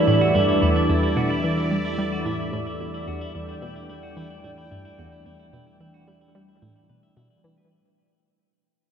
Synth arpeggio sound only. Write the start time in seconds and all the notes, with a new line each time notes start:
0.08 A2
0.35 G2
0.62 E2
0.89 E2
1.17 B2
1.44 E3
1.71 G3
1.98 G3
2.26 A2
2.53 A2
2.80 B2
3.07 E2
3.35 E2
3.62 B2
3.89 E2
4.17 E3
4.44 A2
4.71 G2
4.99 E2
5.26 E2
5.53 B2
5.80 E3
6.08 G3
6.35 G3
6.62 A2
6.89 B2
7.17 B2
7.44 E3